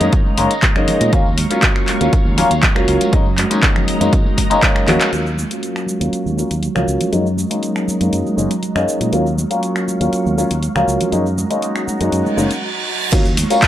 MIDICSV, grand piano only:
0, 0, Header, 1, 2, 480
1, 0, Start_track
1, 0, Tempo, 500000
1, 1081, Time_signature, 4, 2, 24, 8
1, 13129, End_track
2, 0, Start_track
2, 0, Title_t, "Grand piano"
2, 0, Program_c, 0, 0
2, 2, Note_on_c, 0, 56, 70
2, 4, Note_on_c, 0, 58, 65
2, 7, Note_on_c, 0, 61, 66
2, 10, Note_on_c, 0, 63, 77
2, 331, Note_off_c, 0, 56, 0
2, 332, Note_off_c, 0, 58, 0
2, 334, Note_off_c, 0, 61, 0
2, 335, Note_off_c, 0, 63, 0
2, 360, Note_on_c, 0, 56, 93
2, 363, Note_on_c, 0, 58, 85
2, 365, Note_on_c, 0, 61, 86
2, 368, Note_on_c, 0, 63, 100
2, 468, Note_off_c, 0, 56, 0
2, 469, Note_off_c, 0, 58, 0
2, 470, Note_off_c, 0, 61, 0
2, 472, Note_off_c, 0, 63, 0
2, 726, Note_on_c, 0, 56, 93
2, 728, Note_on_c, 0, 58, 83
2, 732, Note_on_c, 0, 61, 84
2, 734, Note_on_c, 0, 63, 101
2, 1053, Note_off_c, 0, 56, 0
2, 1054, Note_off_c, 0, 58, 0
2, 1056, Note_off_c, 0, 61, 0
2, 1057, Note_off_c, 0, 63, 0
2, 1077, Note_on_c, 0, 54, 86
2, 1080, Note_on_c, 0, 58, 80
2, 1082, Note_on_c, 0, 61, 83
2, 1083, Note_on_c, 0, 65, 99
2, 1186, Note_off_c, 0, 54, 0
2, 1188, Note_off_c, 0, 58, 0
2, 1189, Note_off_c, 0, 61, 0
2, 1189, Note_off_c, 0, 65, 0
2, 1443, Note_on_c, 0, 54, 73
2, 1447, Note_on_c, 0, 58, 68
2, 1450, Note_on_c, 0, 61, 66
2, 1452, Note_on_c, 0, 65, 82
2, 1895, Note_off_c, 0, 54, 0
2, 1897, Note_off_c, 0, 58, 0
2, 1898, Note_off_c, 0, 61, 0
2, 1899, Note_off_c, 0, 65, 0
2, 1922, Note_on_c, 0, 54, 71
2, 1924, Note_on_c, 0, 58, 64
2, 1928, Note_on_c, 0, 61, 64
2, 1931, Note_on_c, 0, 65, 81
2, 2251, Note_off_c, 0, 54, 0
2, 2252, Note_off_c, 0, 58, 0
2, 2254, Note_off_c, 0, 61, 0
2, 2256, Note_off_c, 0, 65, 0
2, 2276, Note_on_c, 0, 54, 94
2, 2280, Note_on_c, 0, 58, 85
2, 2280, Note_on_c, 0, 61, 86
2, 2284, Note_on_c, 0, 65, 102
2, 2386, Note_off_c, 0, 54, 0
2, 2388, Note_off_c, 0, 58, 0
2, 2388, Note_off_c, 0, 61, 0
2, 2390, Note_off_c, 0, 65, 0
2, 2642, Note_on_c, 0, 54, 93
2, 2643, Note_on_c, 0, 58, 87
2, 2648, Note_on_c, 0, 61, 84
2, 2649, Note_on_c, 0, 65, 102
2, 2971, Note_off_c, 0, 54, 0
2, 2972, Note_off_c, 0, 58, 0
2, 2974, Note_off_c, 0, 61, 0
2, 2975, Note_off_c, 0, 65, 0
2, 2999, Note_on_c, 0, 56, 90
2, 3001, Note_on_c, 0, 58, 79
2, 3004, Note_on_c, 0, 61, 82
2, 3006, Note_on_c, 0, 63, 96
2, 3107, Note_off_c, 0, 56, 0
2, 3108, Note_off_c, 0, 58, 0
2, 3110, Note_off_c, 0, 61, 0
2, 3111, Note_off_c, 0, 63, 0
2, 3362, Note_on_c, 0, 56, 75
2, 3364, Note_on_c, 0, 58, 68
2, 3367, Note_on_c, 0, 61, 69
2, 3370, Note_on_c, 0, 63, 80
2, 3814, Note_off_c, 0, 56, 0
2, 3815, Note_off_c, 0, 58, 0
2, 3816, Note_off_c, 0, 61, 0
2, 3818, Note_off_c, 0, 63, 0
2, 3843, Note_on_c, 0, 56, 71
2, 3845, Note_on_c, 0, 58, 66
2, 3847, Note_on_c, 0, 61, 65
2, 3850, Note_on_c, 0, 63, 81
2, 4172, Note_off_c, 0, 56, 0
2, 4173, Note_off_c, 0, 58, 0
2, 4174, Note_off_c, 0, 61, 0
2, 4175, Note_off_c, 0, 63, 0
2, 4321, Note_on_c, 0, 56, 89
2, 4323, Note_on_c, 0, 58, 81
2, 4327, Note_on_c, 0, 61, 83
2, 4330, Note_on_c, 0, 63, 100
2, 4421, Note_off_c, 0, 56, 0
2, 4422, Note_off_c, 0, 58, 0
2, 4424, Note_off_c, 0, 61, 0
2, 4425, Note_off_c, 0, 63, 0
2, 4435, Note_on_c, 0, 56, 92
2, 4438, Note_on_c, 0, 58, 84
2, 4651, Note_off_c, 0, 56, 0
2, 4652, Note_off_c, 0, 58, 0
2, 4679, Note_on_c, 0, 56, 88
2, 4681, Note_on_c, 0, 58, 81
2, 4684, Note_on_c, 0, 61, 82
2, 4686, Note_on_c, 0, 66, 96
2, 4893, Note_off_c, 0, 56, 0
2, 4894, Note_off_c, 0, 58, 0
2, 4895, Note_off_c, 0, 61, 0
2, 4896, Note_off_c, 0, 66, 0
2, 4915, Note_on_c, 0, 54, 77
2, 4924, Note_on_c, 0, 65, 88
2, 5025, Note_off_c, 0, 54, 0
2, 5030, Note_off_c, 0, 65, 0
2, 5284, Note_on_c, 0, 54, 66
2, 5286, Note_on_c, 0, 58, 58
2, 5288, Note_on_c, 0, 61, 60
2, 5292, Note_on_c, 0, 65, 69
2, 5735, Note_off_c, 0, 54, 0
2, 5736, Note_off_c, 0, 58, 0
2, 5737, Note_off_c, 0, 61, 0
2, 5739, Note_off_c, 0, 65, 0
2, 5760, Note_on_c, 0, 54, 62
2, 5762, Note_on_c, 0, 58, 59
2, 5765, Note_on_c, 0, 61, 57
2, 5770, Note_on_c, 0, 65, 70
2, 6090, Note_off_c, 0, 54, 0
2, 6091, Note_off_c, 0, 58, 0
2, 6093, Note_off_c, 0, 61, 0
2, 6095, Note_off_c, 0, 65, 0
2, 6116, Note_on_c, 0, 54, 84
2, 6117, Note_on_c, 0, 58, 75
2, 6121, Note_on_c, 0, 61, 76
2, 6123, Note_on_c, 0, 65, 91
2, 6226, Note_off_c, 0, 54, 0
2, 6226, Note_off_c, 0, 58, 0
2, 6228, Note_off_c, 0, 61, 0
2, 6229, Note_off_c, 0, 65, 0
2, 6480, Note_on_c, 0, 54, 82
2, 6484, Note_on_c, 0, 58, 73
2, 6486, Note_on_c, 0, 61, 75
2, 6489, Note_on_c, 0, 65, 89
2, 6810, Note_off_c, 0, 54, 0
2, 6812, Note_off_c, 0, 58, 0
2, 6813, Note_off_c, 0, 61, 0
2, 6815, Note_off_c, 0, 65, 0
2, 6835, Note_on_c, 0, 56, 78
2, 6839, Note_on_c, 0, 58, 71
2, 6841, Note_on_c, 0, 61, 72
2, 6843, Note_on_c, 0, 63, 88
2, 6945, Note_off_c, 0, 56, 0
2, 6947, Note_off_c, 0, 58, 0
2, 6948, Note_off_c, 0, 61, 0
2, 6949, Note_off_c, 0, 63, 0
2, 7201, Note_on_c, 0, 56, 66
2, 7204, Note_on_c, 0, 58, 61
2, 7205, Note_on_c, 0, 61, 59
2, 7207, Note_on_c, 0, 63, 74
2, 7654, Note_off_c, 0, 56, 0
2, 7655, Note_off_c, 0, 58, 0
2, 7656, Note_off_c, 0, 61, 0
2, 7656, Note_off_c, 0, 63, 0
2, 7679, Note_on_c, 0, 56, 64
2, 7682, Note_on_c, 0, 58, 60
2, 7685, Note_on_c, 0, 61, 58
2, 7689, Note_on_c, 0, 63, 71
2, 8010, Note_off_c, 0, 56, 0
2, 8011, Note_off_c, 0, 58, 0
2, 8013, Note_off_c, 0, 61, 0
2, 8015, Note_off_c, 0, 63, 0
2, 8034, Note_on_c, 0, 56, 83
2, 8036, Note_on_c, 0, 58, 78
2, 8038, Note_on_c, 0, 61, 76
2, 8042, Note_on_c, 0, 63, 91
2, 8145, Note_off_c, 0, 56, 0
2, 8146, Note_off_c, 0, 58, 0
2, 8146, Note_off_c, 0, 61, 0
2, 8149, Note_off_c, 0, 63, 0
2, 8401, Note_on_c, 0, 56, 81
2, 8403, Note_on_c, 0, 58, 76
2, 8407, Note_on_c, 0, 61, 75
2, 8408, Note_on_c, 0, 63, 90
2, 8731, Note_off_c, 0, 56, 0
2, 8732, Note_off_c, 0, 58, 0
2, 8734, Note_off_c, 0, 61, 0
2, 8734, Note_off_c, 0, 63, 0
2, 8758, Note_on_c, 0, 54, 78
2, 8761, Note_on_c, 0, 58, 75
2, 8764, Note_on_c, 0, 61, 72
2, 8766, Note_on_c, 0, 65, 89
2, 8867, Note_off_c, 0, 54, 0
2, 8868, Note_off_c, 0, 58, 0
2, 8870, Note_off_c, 0, 61, 0
2, 8871, Note_off_c, 0, 65, 0
2, 9124, Note_on_c, 0, 54, 69
2, 9127, Note_on_c, 0, 58, 61
2, 9127, Note_on_c, 0, 61, 61
2, 9129, Note_on_c, 0, 65, 73
2, 9575, Note_off_c, 0, 54, 0
2, 9577, Note_off_c, 0, 58, 0
2, 9577, Note_off_c, 0, 61, 0
2, 9578, Note_off_c, 0, 65, 0
2, 9602, Note_on_c, 0, 54, 65
2, 9604, Note_on_c, 0, 58, 58
2, 9607, Note_on_c, 0, 61, 61
2, 9610, Note_on_c, 0, 65, 73
2, 9931, Note_off_c, 0, 54, 0
2, 9932, Note_off_c, 0, 58, 0
2, 9934, Note_off_c, 0, 61, 0
2, 9935, Note_off_c, 0, 65, 0
2, 9959, Note_on_c, 0, 54, 84
2, 9962, Note_on_c, 0, 58, 78
2, 9964, Note_on_c, 0, 61, 78
2, 9966, Note_on_c, 0, 65, 93
2, 10067, Note_off_c, 0, 54, 0
2, 10069, Note_off_c, 0, 58, 0
2, 10070, Note_off_c, 0, 61, 0
2, 10071, Note_off_c, 0, 65, 0
2, 10323, Note_on_c, 0, 54, 83
2, 10326, Note_on_c, 0, 58, 77
2, 10329, Note_on_c, 0, 61, 76
2, 10331, Note_on_c, 0, 65, 91
2, 10652, Note_off_c, 0, 54, 0
2, 10653, Note_off_c, 0, 58, 0
2, 10655, Note_off_c, 0, 61, 0
2, 10656, Note_off_c, 0, 65, 0
2, 10673, Note_on_c, 0, 56, 82
2, 10675, Note_on_c, 0, 58, 74
2, 10677, Note_on_c, 0, 61, 72
2, 10681, Note_on_c, 0, 63, 91
2, 10784, Note_off_c, 0, 56, 0
2, 10785, Note_off_c, 0, 58, 0
2, 10786, Note_off_c, 0, 61, 0
2, 10788, Note_off_c, 0, 63, 0
2, 11040, Note_on_c, 0, 56, 67
2, 11042, Note_on_c, 0, 58, 62
2, 11046, Note_on_c, 0, 61, 62
2, 11049, Note_on_c, 0, 63, 76
2, 11493, Note_off_c, 0, 56, 0
2, 11494, Note_off_c, 0, 58, 0
2, 11496, Note_off_c, 0, 61, 0
2, 11498, Note_off_c, 0, 63, 0
2, 11524, Note_on_c, 0, 56, 66
2, 11526, Note_on_c, 0, 58, 62
2, 11529, Note_on_c, 0, 61, 60
2, 11531, Note_on_c, 0, 63, 72
2, 11852, Note_off_c, 0, 56, 0
2, 11853, Note_off_c, 0, 58, 0
2, 11855, Note_off_c, 0, 61, 0
2, 11856, Note_off_c, 0, 63, 0
2, 11875, Note_on_c, 0, 56, 88
2, 11876, Note_on_c, 0, 58, 78
2, 11879, Note_on_c, 0, 61, 78
2, 11881, Note_on_c, 0, 63, 96
2, 11985, Note_off_c, 0, 56, 0
2, 11986, Note_off_c, 0, 58, 0
2, 11987, Note_off_c, 0, 61, 0
2, 11988, Note_off_c, 0, 63, 0
2, 12596, Note_on_c, 0, 54, 88
2, 12597, Note_on_c, 0, 58, 80
2, 12600, Note_on_c, 0, 61, 82
2, 12601, Note_on_c, 0, 65, 95
2, 12706, Note_off_c, 0, 54, 0
2, 12706, Note_off_c, 0, 58, 0
2, 12708, Note_off_c, 0, 61, 0
2, 12708, Note_off_c, 0, 65, 0
2, 12962, Note_on_c, 0, 54, 75
2, 12966, Note_on_c, 0, 58, 68
2, 12968, Note_on_c, 0, 61, 69
2, 12969, Note_on_c, 0, 65, 81
2, 13129, Note_off_c, 0, 54, 0
2, 13129, Note_off_c, 0, 58, 0
2, 13129, Note_off_c, 0, 61, 0
2, 13129, Note_off_c, 0, 65, 0
2, 13129, End_track
0, 0, End_of_file